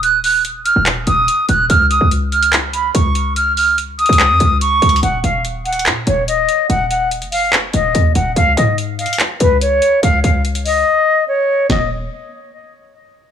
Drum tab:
HH |x-----o-----x-----x-----x-----x-----x-----x-----|x-----x-----x-----x--x--x-----x-----x-----x-----|x-----o-----x-----x-x-x-x-----x-----x-----x-x-x-|x-----x-----x-----x-x-x-x-----x-----x-----x-----|
CP |------------------------x-----------------------|------------------------x-----------------------|------------------------x-----------------------|------------------------x-----------------------|
SD |------------------------------------------------|------------------------------------------------|------------------------------------------------|------------------------------------------------|
BD |------------------------------------------------|------------------------------------------------|------------------------------------------------|------------------------------------------------|

HH |x-----x-----x--x--o-----x-----x-----x-----x-----|x-----x-----x-----x-x-x-x-----x-----x-----x-----|x-----x-----x--x--o-----------------------------|------------------------------------------------|
CP |------------------------x-----------------------|------------------------x-----------------------|------------------------------------------------|------------------------------------------------|
SD |------------------------------------------------|------------------------------------------------|------------------------------------------------|o-----------------------------------------------|
BD |------------------------------------------------|------------------------------------------------|------------------------------------------------|o-----------------------------------------------|